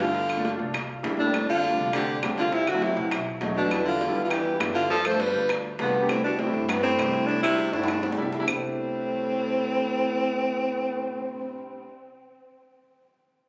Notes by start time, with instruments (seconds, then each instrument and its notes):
Already playing: upright bass G2, grand piano G3 A3 D4 E4
0.00 baritone saxophone D3, alto saxophone F4, high bongo, high timbale
0.15 high bongo
0.29 high bongo, high timbale, claves
0.37 grand piano A3 A#3 D4 F4
0.45 high bongo, high timbale, low timbale
0.58 upright bass C2, grand piano A3 A#3 D4 F4
0.74 high bongo, high timbale, claves
0.90 high bongo
1.03 upright bass F2, grand piano G3 A#3 D4 E4, high bongo, low bongo, high timbale, low timbale
1.19 baritone saxophone A2, alto saxophone D4, high bongo
1.26 grand piano G3 A#3 D4 G4
1.33 grand piano G3 A3 C4 D4, high bongo, high timbale, claves
1.49 baritone saxophone D3, alto saxophone F4, high bongo
1.64 high bongo, high timbale, low timbale
1.71 grand piano G3 A3 C4 D4
1.78 upright bass C2
1.93 baritone saxophone D3, grand piano G3 A3 C4 D4, alto saxophone G4, high bongo, high timbale, claves
2.08 high bongo
2.22 upright bass F#1, grand piano G3 A3 C4 D4, high bongo, low bongo, high timbale, low timbale, claves
2.37 baritone saxophone D3, alto saxophone F4, high bongo, high timbale
2.52 baritone saxophone C3, alto saxophone E4, high bongo
2.67 baritone saxophone D3, alto saxophone F#4, high bongo, high timbale, claves
2.74 grand piano F#3 A3 C4 E4
2.82 baritone saxophone C3, alto saxophone E4, high bongo, high timbale, low timbale
2.96 upright bass B1, grand piano F#3 A3 C4 E4
3.11 high bongo, high timbale, claves
3.27 high bongo
3.41 upright bass E2, grand piano F#3 A3 C#4 D#4, high bongo, low bongo, high timbale, low timbale
3.56 baritone saxophone B2, alto saxophone D4, high bongo
3.64 grand piano F#3 A3 C#4 D#4
3.71 grand piano G3 B3 D4 E4, high bongo, high timbale, claves
3.85 baritone saxophone D3, alto saxophone F4, high bongo
4.01 high bongo, high timbale, low timbale
4.08 grand piano G3 B3 D4 E4
4.16 upright bass E2
4.24 baritone saxophone D3, alto saxophone F4
4.29 baritone saxophone E3, grand piano G3 B3 D4 E4, alto saxophone G4, high bongo, high timbale, claves
4.46 high bongo
4.60 upright bass G2, grand piano G3 B3 D4 E4, high bongo, low bongo, high timbale, low timbale, claves
4.74 baritone saxophone D3, alto saxophone F4, high bongo, high timbale
4.90 baritone saxophone F3, alto saxophone A4, high bongo
5.05 baritone saxophone A3, alto saxophone C5, high bongo, high timbale, claves
5.12 grand piano A3 B3 D4 F4
5.20 baritone saxophone G3, alto saxophone B4, high bongo, high timbale, low timbale
5.34 upright bass D2, grand piano A3 B3 D4 F4
5.49 high bongo, high timbale, claves
5.64 high bongo
5.79 upright bass C2, baritone saxophone G2, grand piano A3 B3 D4 F4, alto saxophone B3, high bongo, low bongo, high timbale, low timbale
5.94 high bongo
6.01 grand piano A3 B3 D4 G4
6.09 baritone saxophone A2, grand piano G3 A3 D4 E4, alto saxophone C4, high bongo, high timbale, claves
6.24 baritone saxophone B2, alto saxophone D4, high bongo
6.39 baritone saxophone A2, alto saxophone C4, high bongo, high timbale, low timbale
6.46 grand piano G3 A3 D4 E4
6.53 upright bass G2
6.68 baritone saxophone G2, grand piano G3 A3 D4 E4, alto saxophone B3, high bongo, high timbale, claves
6.83 baritone saxophone A2, alto saxophone C4, high bongo
6.98 upright bass C2, grand piano G3 A3 D4 E4, high bongo, low bongo, high timbale, low timbale, claves
7.13 high bongo, high timbale
7.26 baritone saxophone A2, alto saxophone D4, high bongo
7.43 baritone saxophone C3, alto saxophone E4, high bongo, high timbale, claves
7.51 grand piano G3 A3 D4 E4
7.58 high bongo, high timbale, low timbale
7.73 upright bass G2, baritone saxophone A2, grand piano G3 A3 D4 E4, alto saxophone D4, high timbale
7.84 high timbale
7.88 high bongo, claves
7.93 low timbale
8.03 high bongo, high timbale
8.12 low timbale
8.17 upright bass C2, grand piano G3 A3 D4 E4
8.22 low timbale
8.32 low bongo, low timbale
8.39 grand piano G3 A3 D4 E4, low timbale
8.46 upright bass C2, baritone saxophone A2, grand piano G3 A3 D4, alto saxophone C4, low bongo, low timbale, claves
8.50 grand piano E4